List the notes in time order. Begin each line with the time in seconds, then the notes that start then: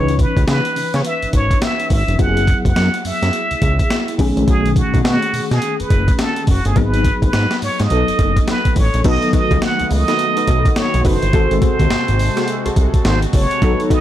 Already playing: C#2 E3 C#4 D#4 B4 C#5
0.08 closed hi-hat
0.19 B4, kick, closed hi-hat
0.37 C#2, kick, closed hi-hat
0.47 C#3 B4, snare, closed hi-hat
0.65 closed hi-hat
0.76 C#3, open hi-hat
0.94 C#3 C#5, snare, closed hi-hat
1.05 E5, closed hi-hat
1.22 G#1, closed hi-hat
1.33 G#1 C#5, kick, closed hi-hat
1.51 kick, closed hi-hat
1.62 E5, snare, closed hi-hat
1.80 closed hi-hat
1.90 G#1 E5, kick, open hi-hat
2.08 F1, closed hi-hat
2.18 F#1 F#3 B3 E4 G4 F#5, kick, closed hi-hat
2.27 G#4
2.37 closed hi-hat
2.47 kick, closed hi-hat
2.65 F#1 F#5, kick, closed hi-hat
2.76 F#2, snare, closed hi-hat
2.94 closed hi-hat
3.05 F#2 E5, open hi-hat
3.22 F#2, snare, closed hi-hat
3.33 closed hi-hat
3.51 C#2, closed hi-hat
3.62 C#2, kick, closed hi-hat
3.79 kick, closed hi-hat
3.90 snare, closed hi-hat
4.08 closed hi-hat
4.18 B1 D#3 A3 C#4 G#4, kick, open hi-hat
4.37 A#1, closed hi-hat
4.48 B1 G#4, kick, closed hi-hat
4.66 closed hi-hat
4.76 F#4, kick, closed hi-hat
4.94 B1, kick, closed hi-hat
5.04 B2 F#4, snare, closed hi-hat
5.22 closed hi-hat
5.33 B2, open hi-hat
5.51 B2 G#4, snare, closed hi-hat
5.62 closed hi-hat
5.80 F#1 B4, closed hi-hat
5.90 F#1, kick, closed hi-hat
6.08 kick, closed hi-hat
6.19 A4, snare, closed hi-hat
6.36 closed hi-hat
6.47 F#1 F#4, kick, open hi-hat
6.65 G1 G#4, closed hi-hat
6.75 G#1 F#3 B3 D#4 G#4 B4, kick, closed hi-hat
6.94 closed hi-hat
7.04 kick, closed hi-hat
7.22 G#1 B4, kick, closed hi-hat
7.33 G#2, snare, closed hi-hat
7.51 snare, closed hi-hat
7.62 G#2 C#5, open hi-hat
7.80 G#2 D#5, snare, closed hi-hat
7.90 B1 F#3 B3 D#4 A4, closed hi-hat
8.08 F#1, closed hi-hat
8.19 F#1, kick, closed hi-hat
8.37 kick, closed hi-hat
8.48 B4, snare, closed hi-hat
8.65 kick, closed hi-hat
8.76 A1 C#5, kick, open hi-hat
8.94 A#1, closed hi-hat
9.04 B1 D#3 F#3 A3 B3 D#4 F#4 A4 B4 D#5, kick, closed hi-hat, crash
9.22 closed hi-hat
9.33 D#4 F#4 A4 B4 D#5, kick, closed hi-hat
9.51 C#2, kick, closed hi-hat
9.62 F#5, snare, closed hi-hat
9.79 C#2, closed hi-hat
9.91 C#2 D#5, open hi-hat
10.08 D#4 F#4 A4 B4, snare, closed hi-hat
10.19 closed hi-hat
10.37 D#4 F#4 A4 B4, closed hi-hat
10.47 B1, kick, closed hi-hat
10.65 kick, closed hi-hat
10.76 C#5, snare, closed hi-hat
10.94 B1, closed hi-hat
11.05 F#1 D#4 F#4 A4 B4 C5, kick, open hi-hat
11.22 G1, closed hi-hat
11.33 G#1 C3 G#3 C4 F#4 G#4 A4 C5, kick, closed hi-hat
11.51 G#1, closed hi-hat
11.62 F#4 G#4 A4 C5, kick, closed hi-hat
11.79 D#2, kick, closed hi-hat
11.90 G#1, snare, closed hi-hat
12.08 G#1, closed hi-hat
12.19 open hi-hat
12.36 F#4 G#4 A4 C5, snare, closed hi-hat
12.48 closed hi-hat
12.65 C2 F#4 G#4 A4 C5, closed hi-hat
12.76 C2, kick, closed hi-hat
12.94 kick, closed hi-hat
13.05 G#1 C5, snare, closed hi-hat
13.22 closed hi-hat
13.33 F#1 C#5, kick, open hi-hat
13.51 closed hi-hat
13.62 B1 D#3 F#3 B3 D#4 F#4 A4 B4, kick, closed hi-hat
13.80 closed hi-hat
13.90 D#4 F#4 A4 B4 D#5, kick, closed hi-hat